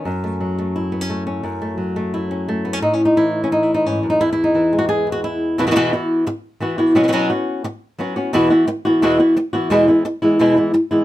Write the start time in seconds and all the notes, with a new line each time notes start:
Already playing: C#4
0.05 F#2
0.24 A3
0.40 F#3
0.58 A3
0.76 E4
0.92 B3
1.01 C#4
1.10 A3
1.27 C#4
1.43 F#2
1.62 A3
1.78 F#3
1.96 A3
2.14 E4
2.31 C#4
2.48 A3
2.65 B3
2.73 C#4
2.82 A2 D#4
2.93 C#4
3.05 D#4
3.17 E3 E4
3.44 C#4
3.52 D#4
3.63 E4
3.74 D#4
3.86 G#2 C#4
4.03 F#2
4.10 D#4
4.20 E2 E4
4.33 E4
4.44 D#4
4.54 E3 E4
4.73 G#3
4.79 F#4
4.89 G#4
5.07 B3
5.12 F#4
5.24 E4
5.58 E2 B2 E3 B3 E4 F#4
5.67 B2 E3 B3 E4 F#4
5.71 B2 E3 B3 E4 F#4
5.76 E2 B2 E3 B3 E4 F#4
5.93 E3 B3 E4 F#4
6.27 muted nylon-string guitar stroke
6.60 E3 B3 E4 F#4
6.78 E3 B3 E4 F#4
6.95 B2 F#3 B3 C#4 F#4
7.03 F#3 B3 C#4 F#4
7.08 F#3 B3 C#4 F#4
7.12 B2 F#3 B3 C#4 F#4
7.30 B3 C#4 F#4
7.64 muted nylon-string guitar stroke
7.99 F#3 B3 C#4 F#4
8.16 B3 C#4 F#4
8.33 E2 B2 E3 B3 E4 F#4
8.50 E3 B3 E4 F#4
8.67 muted nylon-string guitar stroke
8.85 E3 B3 E4 F#4
9.02 E2 B2 E3 B3 E4 F#4
9.20 E3 B3 E4 F#4
9.37 muted nylon-string guitar stroke
9.53 E3 B3 E4 F#4
9.70 E2 B2 E3 G#3 B3 E4
9.88 E3 G#3 B3 E4
10.05 muted nylon-string guitar stroke
10.22 E3 G#3 B3 E4
10.39 E2 B2 E3 G#3 B3 E4
10.57 E3 G#3 B3 E4
10.74 muted nylon-string guitar stroke
10.91 E3 G#3 B3 E4